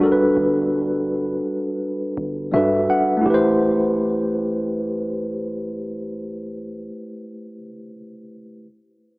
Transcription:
0.00 2.47 G3 medium
0.00 2.48 D4 medium
0.00 2.50 F#4 medium
0.00 2.51 A4 medium
0.05 0.10 A#4 medium
0.12 2.55 B4 medium
0.37 1.41 G1 loud
2.17 2.52 G1 loud
2.51 2.88 G2 loud
2.51 3.25 G3 soft
2.51 3.25 D4 soft
2.51 3.26 F#4 soft
2.51 3.26 A4 soft
2.51 2.87 E5 medium
2.56 3.27 B4 medium
2.90 3.23 F#5 medium
3.17 7.56 A3 medium
3.21 7.59 E4 medium
3.26 6.91 A1 loud
3.26 7.61 G4 medium
3.30 7.63 B4 medium
3.34 7.65 C5 medium

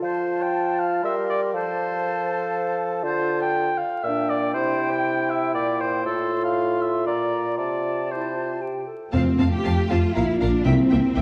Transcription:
0.00 1.01 F3 medium
0.00 1.03 F4 soft
0.00 0.43 C5 medium
0.00 1.05 A5 soft
0.42 0.81 G5 medium
0.80 1.04 F5 medium
1.03 1.55 G3 medium
1.03 1.56 A#4 medium
1.03 1.16 E5 medium
1.03 1.53 C6 soft
1.29 1.41 D5 medium
1.54 3.05 F3 medium
1.54 3.05 A4 medium
1.54 2.77 C5 medium
1.54 3.73 A5 medium
3.03 3.76 D3 medium
3.03 3.76 F4 medium
3.03 3.39 C5 medium
3.42 3.79 G5 medium
3.78 4.05 F5 medium
4.03 4.56 A#2 medium
4.03 4.56 D4 medium
4.03 4.31 E5 medium
4.03 6.02 G5 medium
4.30 4.53 D5 medium
4.54 5.56 C3 medium
4.54 6.04 E4 medium
4.54 4.91 C5 medium
4.91 5.32 G5 medium
5.30 5.54 E5 medium
5.54 6.05 A#2 medium
5.54 5.82 D5 medium
5.81 6.05 C5 medium
6.05 7.05 A2 medium
6.05 8.01 F4 medium
6.05 6.43 A4 medium
6.05 7.09 C6 medium
6.44 6.83 F5 medium
6.81 7.06 E5 medium
7.06 7.60 A#2 soft
7.06 7.57 D5 medium
7.06 7.57 A#5 soft
7.57 8.87 C3 soft
7.57 8.13 D5 medium
7.57 8.63 A5 soft
8.11 8.36 E4 soft
8.11 8.62 C5 soft
8.35 8.62 F4 soft
8.61 8.86 G4 soft
8.61 8.88 G5 soft
8.87 9.13 A4 soft
9.12 9.86 F2 medium
9.12 9.21 F2 medium
9.12 10.11 A3 medium
9.12 9.21 C4 soft
9.12 9.49 C4 medium
9.12 10.11 F4 soft
9.12 9.21 F5 soft
9.12 9.20 A5 medium
9.38 9.47 F2 soft
9.38 9.46 C4 soft
9.38 9.48 F5 soft
9.38 9.46 A5 soft
9.51 9.89 G4 medium
9.64 9.73 F2 soft
9.64 9.72 C4 soft
9.64 9.72 F5 soft
9.64 9.72 A5 medium
9.89 9.98 F2 medium
9.89 9.98 C4 soft
9.89 10.15 F4 medium
9.89 9.97 F5 soft
9.89 9.97 A5 soft
10.15 10.24 A#1 medium
10.15 10.65 A#3 soft
10.15 10.24 A#3 soft
10.15 10.40 E4 medium
10.15 10.65 F4 soft
10.15 10.24 F5 soft
10.15 10.23 A#5 soft
10.40 10.49 A#1 soft
10.40 10.49 A#3 soft
10.40 10.65 D4 medium
10.40 10.49 F5 soft
10.40 10.48 A#5 soft
10.65 10.75 C2 medium
10.65 11.22 C3 medium
10.65 10.73 A#3 soft
10.65 11.22 A#3 medium
10.65 11.22 C4 medium
10.65 11.22 E4 medium
10.65 10.74 E5 medium
10.65 10.73 G5 medium
10.89 10.99 C2 soft
10.89 10.99 A#3 soft
10.89 11.00 E5 soft
10.89 10.97 G5 soft
11.16 11.22 C2 medium
11.16 11.22 A#3 soft
11.16 11.22 E5 soft
11.16 11.22 G5 soft

